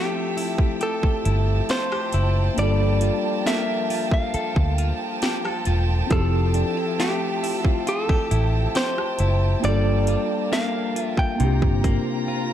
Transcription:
Already playing: F3 A3 C4 E4 G4 E5 G5 A5
0.37 E4, open hi-hat
0.58 kick
0.81 G4 A4, closed hi-hat
1.03 muted fingered electric bass stroke, kick
1.25 G1 E4, closed hi-hat
1.69 F4 C5, snare, closed hi-hat
1.92 G4, cross-stick
2.13 F#1 E4, closed hi-hat
2.54 G1 A#3 D4, closed hi-hat
2.58 G3 F4 D5
2.63 A4
3.01 F4, closed hi-hat
3.46 A#3 E5, snare, closed hi-hat
3.90 F4, open hi-hat
4.11 F5, kick
4.34 A4, muted fingered electric bass stroke, closed hi-hat
4.56 D2, kick
4.78 F4, closed hi-hat
5.22 G4, snare, closed hi-hat
5.45 A4, cross-stick
5.65 E1 F4, closed hi-hat
6.07 F3 C4 E4 E5, kick, closed hi-hat
6.11 F1 G4 G#4 A4
6.22 A4
6.54 D4, closed hi-hat
6.77 E4
6.99 A3 G4, snare, closed hi-hat
7.43 E4, open hi-hat
7.65 F4, kick
7.87 F4 A4, closed hi-hat
8.09 G4, muted fingered electric bass stroke, kick
8.31 A1 E4, closed hi-hat
8.75 G4 C5, snare, closed hi-hat
8.98 cross-stick
9.19 F#1 E4, closed hi-hat
9.60 G3 A#3 D4, closed hi-hat
9.64 G1 F4 D5
9.68 A4
10.07 F4, closed hi-hat
10.52 A#3 F5, snare, closed hi-hat
10.96 F4, closed hi-hat
11.01 E5
11.17 G5, kick
11.36 A#3 D4, closed hi-hat
11.40 C2 C3 E4 F4 C5 A#5
11.44 F4 G4
11.62 G1, kick
11.84 A#3, kick, closed hi-hat
12.28 F4

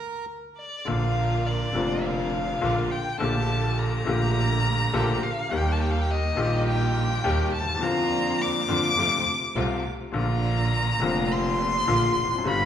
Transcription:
Already playing: A#4
0.58 D5
0.85 A#1 A#2 D3 F3 A#3 D4 F4 A#4 F5
0.89 F4
1.47 D5
1.72 F1 F2 D3 F3 A#3 D4 F4 A#4
1.77 F4
2.04 F5
2.61 A#1 A#2 D3 F3 A#3 D4 F4 A#4
2.91 G5
3.18 A#1 A#2 D3 A3 A#3 G4 A4 A5
3.22 G4
3.78 A#5
4.05 A#1 A#2 D3 A3 A#3 G4
4.09 G4
4.93 A#1 A#2 D3 A3 A#3 G4 A4
5.23 F5
5.50 D#2 D#3 G3 A#3 D#4 G4 G5
5.72 A5
5.81 G5
5.91 F5
6.01 G5
6.10 D#5
6.35 A#1 A#2 D#3 G3 A#3 D#4 G4
6.39 G4
6.68 G5
7.24 D#2 D#3 G3 A#3 D#4 G4
7.54 D#2 A5
7.60 D2
7.68 D#2
7.75 E2
7.80 F2 D3 F3 A#3 D4 F4 A#5
7.84 F4
8.42 D6
8.68 F2 D3 F3 A#3 D4 F4
8.97 F2 C3 F3 A3 C4 F4
9.55 C2 C3 F3 A3 C4 F4
10.12 A#1 A#2 D3 F3 A#3 D4 F4 A#5
10.99 F1 F2 D3 F3 A#3 D4 F4
11.32 C6
11.88 A#1 A#2 D3 F3 A#3 D4 F4
12.16 F1
12.24 E2
12.31 F2
12.38 F#2
12.44 G1 G2 D3 G3 B3 F4 G4 B5

